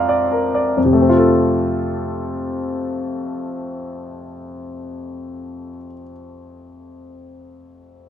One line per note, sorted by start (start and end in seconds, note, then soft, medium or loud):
0.00 0.73 F2 soft
0.00 0.80 D4 soft
0.00 0.09 D5 soft
0.00 0.79 E5 soft
0.00 0.22 F5 soft
0.00 0.80 A#5 soft
0.00 0.79 C6 soft
0.09 0.46 D5 soft
0.32 0.68 A#4 soft
0.54 0.76 D5 soft
0.77 5.69 F2 soft
0.85 5.77 C3 soft
0.93 5.85 A3 soft
1.01 5.94 C4 soft
1.09 6.02 F4 soft
1.18 6.10 A4 soft